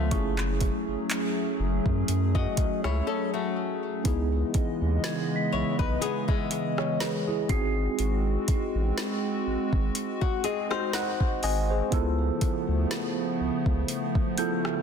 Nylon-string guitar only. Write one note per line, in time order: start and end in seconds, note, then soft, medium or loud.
0.00 0.36 A3 medium
0.00 0.36 F4 medium
2.35 2.82 F#4 medium
2.35 2.82 D#5 medium
2.84 3.06 E4 medium
2.84 3.06 C#5 medium
3.07 3.32 C#4 medium
3.07 3.32 A4 medium
3.34 4.02 A3 medium
3.34 4.02 F#4 medium
5.52 5.78 E4 medium
5.52 5.78 C#5 medium
5.79 6.01 D#4 medium
5.79 6.01 B4 medium
6.01 6.27 B3 medium
6.01 6.27 G#4 medium
6.28 7.45 G#3 medium
6.28 7.45 E4 medium
10.21 10.43 F#4 medium
10.44 10.70 C4 medium
10.44 10.70 G#4 medium
10.71 11.88 D#4 medium
10.71 11.88 C5 medium